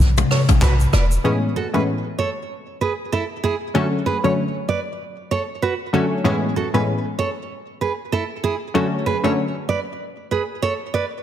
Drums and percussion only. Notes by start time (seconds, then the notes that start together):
0.00 low conga
0.18 mid tom, low bongo, shaker
0.31 cross-stick, open hi-hat
0.48 mid tom, low bongo, shaker
0.62 kick, cross-stick, clap, hi-hat pedal, high bongo, shaker
0.80 shaker
0.93 cross-stick, high bongo, shaker
1.11 shaker